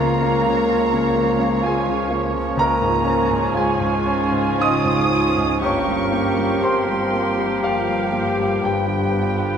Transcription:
Already playing: cello section C#2, grand piano C#2 A#4 A#5, double bass section C#2, bassoon F3, french horn section A#3, clarinet F4, violin section C#5 A#5, cor anglais C#5, flute F5
0.00 grand piano C#3, viola section A#3
0.23 grand piano A#3, viola section C#4
0.45 grand piano C#3, viola section F4
0.69 viola section C#4, grand piano F4
0.93 grand piano C#3, viola section A#3
1.16 viola section F3, grand piano A#3
1.39 grand piano C#3, viola section A#3
1.62 french horn section G#3, viola section C#4, grand piano F4 G#5, violin section G#5
1.67 grand piano G#4
1.87 grand piano C#3, viola section F4
2.11 grand piano A#3, viola section C#4
2.33 grand piano C#3, viola section A#3
2.55 grand piano C#2, double bass section C#2, cello section C#2, french horn section A#3, clarinet F4, flute G#5, violin section A#5
2.59 grand piano A#4 A#5
2.82 grand piano G#2
3.05 grand piano C#4, viola section C#4 F4, violin section G#4
3.31 grand piano G#2
3.54 cello section C#2, double bass section C#2, french horn section G#3, grand piano F4 G#4 G#5, violin section G#5
3.79 grand piano G#2
4.06 grand piano C#4, viola section C#4 F4, violin section G#4
4.32 grand piano G#2
4.59 cello section C#2, double bass section C#2, french horn section D#4, grand piano F4 D#5 D#6, violin section D#6
4.84 grand piano G#2
5.09 grand piano C#4, viola section C#4 F4, violin section G#4
5.36 grand piano G#2
5.60 double bass section G1, grand piano G2 C#6, cello section G2, bassoon F3, viola section A#3 F4, french horn section C#4, clarinet G4, violin section G4 C#6, cor anglais A#4, flute G5
5.65 grand piano C#5
5.87 grand piano G3
6.11 viola section A#3 F4, grand piano A#3, violin section G4
6.36 grand piano G3
6.61 double bass section G1, cello section G2, french horn section C4, grand piano G4 C5 C6, violin section C6
6.89 grand piano G3
7.12 viola section A#3 F4, grand piano A#3, violin section G4
7.37 grand piano G3
7.62 double bass section G1, cello section G2, french horn section F3, grand piano F4 G4 F5, violin section F5
7.88 grand piano G3
8.12 grand piano A#3, viola section A#3 F4, violin section G4
8.37 grand piano G3
8.61 double bass section G1, grand piano G2 G5, cello section G2, french horn section G3, cor anglais B4, violin section G5
8.66 grand piano G4
8.87 grand piano D3
9.12 grand piano B3, viola section F4, violin section G4
9.16 viola section B3
9.39 grand piano D3

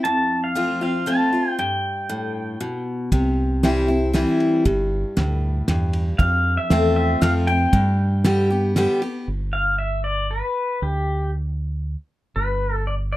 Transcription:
0.04 steel-string acoustic guitar F2, pedal steel guitar A5
0.44 pedal steel guitar F5
0.55 steel-string acoustic guitar F3 A3 C4 F4
0.81 steel-string acoustic guitar C4 F4, pedal steel guitar F5
1.06 steel-string acoustic guitar F3 A3 C4 F4, pedal steel guitar A5
1.33 steel-string acoustic guitar C4 F4
1.59 steel-string acoustic guitar G2, pedal steel guitar G5
2.09 steel-string acoustic guitar A2
2.60 steel-string acoustic guitar B2
3.12 fingered electric bass C2, steel-string acoustic guitar C3, kick, ride
3.63 steel-string acoustic guitar E3 G3 C4 E4, snare, ride
3.88 steel-string acoustic guitar C4 E4
4.13 steel-string acoustic guitar E3 G3 C4 E4, snare, ride
4.40 ride
4.65 fingered electric bass G1, steel-string acoustic guitar G2, kick, ride
5.17 fingered electric bass D2, steel-string acoustic guitar A2, snare, ride
5.68 fingered electric bass E2, steel-string acoustic guitar G2, snare, ride
5.93 ride
6.18 fingered electric bass F2, steel-string acoustic guitar F2, pedal steel guitar F5, kick, ride
6.57 pedal steel guitar E5
6.70 fingered electric bass E2, steel-string acoustic guitar A3 C4 F4, snare, ride
6.96 pedal steel guitar E5
7.21 fingered electric bass F2, steel-string acoustic guitar F3 A3 C4 F4, pedal steel guitar F5, snare, ride
7.47 steel-string acoustic guitar C4 F4, pedal steel guitar G5, ride
7.73 fingered electric bass G2, steel-string acoustic guitar G2, kick, ride
8.24 steel-string acoustic guitar D3 G3 B3 G4, snare, ride
8.50 steel-string acoustic guitar B3 G4
8.76 steel-string acoustic guitar D3 G3 B3 G4, snare, ride
9.02 steel-string acoustic guitar B3 G4, ride
9.28 fingered electric bass G1
9.53 pedal steel guitar F5
9.79 pedal steel guitar E5
10.04 pedal steel guitar D5
10.31 pedal steel guitar B4
10.82 fingered electric bass D2, pedal steel guitar G4
12.36 fingered electric bass G1, pedal steel guitar B4
12.87 pedal steel guitar D5
13.13 pedal steel guitar E5

